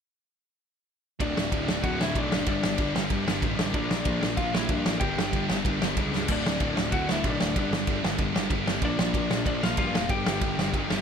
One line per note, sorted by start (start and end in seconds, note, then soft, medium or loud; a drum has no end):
1.20 1.36 D1 loud
1.20 1.36 D2 medium
1.20 1.36 A2 medium
1.20 1.35 D3 medium
1.20 1.99 A3 medium
1.20 1.81 D4 medium
1.20 1.98 F#4 loud
1.20 1.87 D5 medium
1.20 kick loud
1.20 ride medium
1.36 1.51 D1 medium
1.36 1.51 D2 medium
1.36 1.52 A2 medium
1.36 1.52 D3 loud
1.36 snare loud
1.52 1.67 D1 medium
1.52 1.68 D2 medium
1.52 1.68 A2 medium
1.52 1.67 D3 medium
1.52 kick loud
1.52 ride medium
1.68 1.83 D1 medium
1.68 1.82 D2 medium
1.68 1.82 A2 loud
1.68 1.83 D3 loud
1.68 snare loud
1.83 1.99 D1 loud
1.83 1.98 D2 medium
1.83 1.98 A2 loud
1.83 1.98 D3 loud
1.83 1.99 F#4 medium
1.83 2.02 F#5 medium
1.83 kick loud
1.83 ride medium
1.99 2.15 D1 medium
1.99 2.14 D2 medium
1.99 2.15 A2 medium
1.99 2.15 D3 medium
1.99 2.15 A3 medium
1.99 2.16 E4 medium
1.99 2.15 F#4 medium
1.99 2.18 E5 loud
1.99 snare loud
2.15 2.31 B1 loud
2.15 2.31 D2 loud
2.15 2.30 A2 loud
2.15 2.30 D3 loud
2.15 2.48 A3 medium
2.15 2.46 D4 medium
2.15 2.48 F#4 medium
2.15 2.47 D5 medium
2.15 kick loud
2.15 ride medium
2.32 2.46 F#1 medium
2.32 2.47 D2 medium
2.32 2.47 A2 medium
2.32 2.47 D3 loud
2.32 snare loud
2.46 2.62 G1 loud
2.46 2.63 G2 medium
2.46 2.63 D3 loud
2.46 2.62 G3 loud
2.46 3.25 B3 loud
2.46 2.92 D4 medium
2.46 3.26 D4 loud
2.46 3.25 G4 loud
2.46 2.92 D5 medium
2.46 kick loud
2.46 ride medium
2.63 2.78 G1 loud
2.63 2.76 G2 medium
2.63 2.77 D3 medium
2.63 2.78 G3 loud
2.63 snare loud
2.78 2.94 G1 medium
2.78 2.95 G2 medium
2.78 2.95 D3 medium
2.78 2.94 G3 loud
2.78 kick loud
2.78 ride medium
2.95 3.10 G1 medium
2.95 3.10 G2 medium
2.95 3.10 D3 medium
2.95 3.10 G3 loud
2.95 snare loud
3.10 3.26 G1 medium
3.10 3.26 G2 medium
3.10 3.26 D3 loud
3.10 3.26 G3 medium
3.10 kick loud
3.10 ride medium
3.26 3.42 G1 medium
3.26 3.42 G2 medium
3.26 3.42 D3 medium
3.26 3.43 G3 medium
3.26 3.41 B3 medium
3.26 3.42 D4 medium
3.26 3.42 G4 medium
3.26 snare loud
3.42 3.72 A1 medium
3.42 3.57 G2 loud
3.42 3.57 D3 medium
3.42 3.57 G3 loud
3.42 3.73 B3 medium
3.42 3.75 D4 medium
3.42 3.74 G4 medium
3.42 kick loud
3.42 ride medium
3.58 3.74 G2 medium
3.58 3.73 D3 medium
3.58 3.73 G3 loud
3.58 snare loud
3.74 3.89 A#1 loud
3.74 3.91 A#2 medium
3.74 3.90 F3 loud
3.74 3.90 A#3 loud
3.74 4.34 D4 medium
3.74 4.55 D4 loud
3.74 4.53 F4 medium
3.74 4.52 A#4 loud
3.74 4.40 D5 medium
3.74 kick loud
3.74 ride medium
3.91 4.05 A#1 medium
3.91 4.06 A#2 medium
3.91 4.06 F3 medium
3.91 4.07 A#3 loud
3.91 snare loud
4.05 4.21 A#1 medium
4.05 4.22 A#2 medium
4.05 4.23 F3 medium
4.05 4.21 A#3 medium
4.05 kick loud
4.05 ride medium
4.20 4.37 A#1 medium
4.20 4.37 A#2 medium
4.20 4.34 F3 medium
4.20 4.37 A#3 loud
4.20 snare loud
4.24 4.37 F3 medium
4.37 4.53 A#1 medium
4.37 4.54 A#2 medium
4.37 4.53 F3 loud
4.37 4.53 A#3 medium
4.37 4.53 F4 medium
4.37 4.54 F5 loud
4.37 kick loud
4.37 ride medium
4.54 4.69 A#1 medium
4.54 4.68 A#2 medium
4.54 4.69 F3 medium
4.54 4.69 A#3 medium
4.54 4.70 D4 medium
4.54 4.68 E4 medium
4.54 4.69 F4 medium
4.54 4.69 A#4 medium
4.54 4.70 E5 medium
4.54 snare loud
4.69 4.84 G2 medium
4.69 4.85 A#2 loud
4.69 4.85 F3 loud
4.69 4.84 A#3 loud
4.69 4.99 D4 medium
4.69 5.02 D4 medium
4.69 5.01 F4 medium
4.69 5.01 A#4 loud
4.69 5.02 D5 medium
4.69 kick loud
4.69 ride medium
4.86 5.00 A1 loud
4.86 5.01 A#2 medium
4.86 5.01 F3 medium
4.86 5.00 A#3 loud
4.86 snare loud
5.00 5.16 G1 medium
5.00 5.18 G2 loud
5.00 5.18 D3 medium
5.00 5.17 G3 loud
5.00 5.80 B3 loud
5.00 5.80 D4 loud
5.00 5.45 G4 medium
5.00 5.79 G4 loud
5.00 5.45 G5 medium
5.00 kick loud
5.00 ride medium
5.18 5.32 G1 medium
5.18 5.34 G2 medium
5.18 5.34 D3 medium
5.18 5.34 G3 medium
5.18 snare loud
5.33 5.48 G1 medium
5.33 5.50 G2 medium
5.33 5.50 D3 medium
5.33 5.49 G3 medium
5.33 kick loud
5.33 ride medium
5.49 5.64 G1 loud
5.49 5.64 G2 medium
5.49 5.65 D3 loud
5.49 5.65 G3 loud
5.49 snare loud
5.65 5.80 G1 medium
5.65 5.81 G2 medium
5.65 5.81 D3 medium
5.65 5.80 G3 loud
5.65 kick loud
5.65 ride medium
5.80 5.96 G1 medium
5.80 5.97 G2 medium
5.80 5.98 D3 medium
5.80 5.98 G3 medium
5.80 5.96 B3 medium
5.80 5.98 D4 medium
5.80 5.95 G4 medium
5.80 snare loud
5.97 6.26 C#2 medium
5.97 6.13 G2 medium
5.97 6.13 D3 loud
5.97 6.13 G3 loud
5.97 6.28 B3 medium
5.97 7.56 D4 medium
5.97 6.28 G4 medium
5.97 kick loud
5.97 ride medium
6.14 6.28 G2 medium
6.14 6.28 D3 medium
6.14 6.28 G3 loud
6.14 snare medium
6.28 6.43 D1 medium
6.28 6.46 D2 medium
6.28 6.46 A2 loud
6.28 6.45 D3 loud
6.28 7.06 A3 loud
6.28 6.89 D4 medium
6.28 7.06 F#4 loud
6.28 kick loud
6.28 crash loud
6.28 ride medium
6.32 6.96 D5 medium
6.46 6.60 D1 medium
6.46 6.62 D2 medium
6.46 6.62 A2 medium
6.46 6.62 D3 medium
6.46 snare loud
6.60 6.75 D1 medium
6.60 6.78 D2 medium
6.60 6.78 A2 medium
6.60 6.78 D3 medium
6.60 kick loud
6.60 ride medium
6.77 6.92 D1 medium
6.77 6.93 D2 medium
6.77 6.94 A2 loud
6.77 6.94 D3 medium
6.77 snare loud
6.92 7.07 D1 loud
6.92 7.10 D2 medium
6.92 7.10 A2 medium
6.92 7.09 D3 loud
6.92 7.06 F#4 medium
6.92 7.09 F#5 loud
6.92 kick loud
6.92 ride medium
7.07 7.23 D1 medium
7.07 7.25 D3 medium
7.07 7.22 A3 medium
7.07 7.24 E4 medium
7.07 7.22 F#4 medium
7.07 snare loud
7.11 7.24 D2 medium
7.11 7.25 A2 medium
7.11 7.26 E5 loud
7.24 7.39 B1 medium
7.24 7.41 D2 loud
7.24 7.41 A2 loud
7.24 7.40 D3 loud
7.24 7.55 A3 medium
7.24 7.55 D4 medium
7.24 7.55 F#4 medium
7.24 kick loud
7.24 ride medium
7.30 7.58 D5 medium
7.40 7.54 D1 medium
7.40 7.55 D2 medium
7.40 7.55 A2 loud
7.40 7.55 D3 loud
7.40 snare loud
7.55 7.70 G1 loud
7.55 7.72 G2 loud
7.55 7.72 D3 loud
7.55 7.71 G3 loud
7.55 8.34 B3 loud
7.55 8.34 D4 loud
7.55 8.01 D4 medium
7.55 8.34 G4 loud
7.55 8.02 D5 medium
7.55 kick loud
7.55 ride medium
7.71 7.86 G1 medium
7.71 7.86 G2 medium
7.71 7.86 D3 medium
7.71 7.87 G3 medium
7.71 snare loud
7.87 8.02 G1 medium
7.87 8.02 G2 medium
7.87 8.02 D3 medium
7.87 8.02 G3 medium
7.87 kick loud
7.87 ride medium
8.03 8.18 G1 loud
8.03 8.17 G2 medium
8.03 8.18 D3 loud
8.03 8.18 G3 loud
8.03 snare loud
8.18 8.34 G1 medium
8.18 8.33 G2 medium
8.18 8.33 D3 medium
8.18 8.33 G3 loud
8.18 kick loud
8.18 ride medium
8.34 8.50 G1 medium
8.34 8.49 G2 medium
8.34 8.49 D3 medium
8.34 8.49 G3 medium
8.34 8.50 B3 medium
8.34 8.53 D4 medium
8.34 8.50 G4 medium
8.34 snare loud
8.50 8.80 G1 medium
8.50 8.65 G2 loud
8.50 8.64 D3 loud
8.50 8.64 G3 loud
8.50 8.82 B3 medium
8.50 8.84 D4 medium
8.50 8.83 G4 medium
8.50 kick loud
8.50 ride medium
8.65 8.81 G2 medium
8.65 8.81 D3 medium
8.65 8.81 G3 medium
8.65 snare loud
8.82 8.97 A#1 loud
8.82 8.97 A#2 loud
8.82 8.96 F3 loud
8.82 8.96 A#3 loud
8.82 9.62 D4 loud
8.82 9.43 D4 medium
8.82 9.61 F4 loud
8.82 9.60 A#4 loud
8.82 9.46 D5 medium
8.82 kick loud
8.82 ride medium
8.97 9.13 A#1 loud
8.97 9.11 A#2 medium
8.97 9.12 F3 loud
8.97 9.12 A#3 medium
8.97 snare loud
9.13 9.29 A#1 medium
9.13 9.29 A#2 medium
9.13 9.29 F3 medium
9.13 9.28 A#3 medium
9.13 kick loud
9.13 ride medium
9.30 9.45 A#1 medium
9.30 9.43 A#2 medium
9.30 9.44 F3 loud
9.30 9.44 A#3 loud
9.30 snare loud
9.44 9.61 A#1 medium
9.44 9.61 A#2 medium
9.44 9.61 F3 medium
9.44 9.60 A#3 loud
9.44 9.63 D5 loud
9.44 kick loud
9.44 ride medium
9.49 9.62 D4 medium
9.61 9.77 A#1 medium
9.61 9.77 A#2 medium
9.61 9.77 F3 medium
9.61 9.77 A#3 medium
9.61 9.78 D4 medium
9.61 9.77 F4 medium
9.61 9.76 A#4 medium
9.61 9.77 F5 medium
9.61 snare loud
9.77 9.93 G2 medium
9.77 9.93 A#2 medium
9.77 9.92 F3 loud
9.77 9.92 A#3 loud
9.77 10.11 D4 medium
9.77 10.09 F4 medium
9.77 10.08 F4 medium
9.77 10.09 A#4 medium
9.77 10.10 F5 loud
9.77 kick loud
9.77 ride medium
9.93 10.10 F1 medium
9.93 10.08 A#2 medium
9.93 10.08 F3 medium
9.93 10.08 A#3 medium
9.93 snare loud
10.09 10.24 G1 loud
10.09 10.25 G2 medium
10.09 10.25 D3 loud
10.09 10.24 G3 loud
10.09 10.89 B3 loud
10.09 10.89 D4 loud
10.09 10.88 G4 loud
10.09 11.01 G4 medium
10.09 11.01 G5 loud
10.09 kick loud
10.09 ride medium
10.25 10.40 G1 medium
10.25 10.40 G2 medium
10.25 10.40 D3 medium
10.25 10.41 G3 medium
10.25 snare loud
10.41 10.56 G1 loud
10.41 10.57 G2 medium
10.41 10.56 D3 medium
10.41 10.56 G3 loud
10.41 kick loud
10.41 ride medium
10.57 10.73 G1 medium
10.57 10.71 G2 medium
10.57 10.71 D3 loud
10.57 10.72 G3 loud
10.57 snare loud
10.72 10.88 G1 medium
10.72 10.89 G2 medium
10.72 10.88 D3 medium
10.72 10.88 G3 loud
10.72 kick loud
10.72 ride medium
10.89 11.01 G1 medium
10.89 11.01 G2 medium
10.89 11.01 D3 medium
10.89 11.01 G3 medium
10.89 11.01 B3 medium
10.89 11.01 D4 medium
10.89 11.01 G4 medium
10.89 snare loud